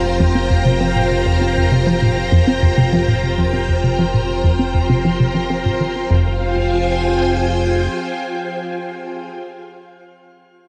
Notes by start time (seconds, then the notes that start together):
Already playing: F1 F4 C5 G5 A#5
0.20 F2
0.35 C4
0.50 F2
0.65 C3
0.80 F3
0.96 A#2
1.26 F2
1.41 C4
1.56 F2
1.72 C3
1.87 F3
2.02 A#2
2.32 F2
2.47 C4
2.63 F2
2.78 C3
2.93 F3
3.08 A#2
3.38 F2
3.53 C4
3.68 F2
3.84 C3
3.99 F3
4.14 A#2
4.44 F2
4.59 C4
4.74 F2
4.90 C3
5.05 F3
5.20 C3
5.35 F3
5.50 C4
5.65 G#2
5.80 D#3
6.10 F1 F2 F4
6.19 C5
6.29 G5
6.38 G#5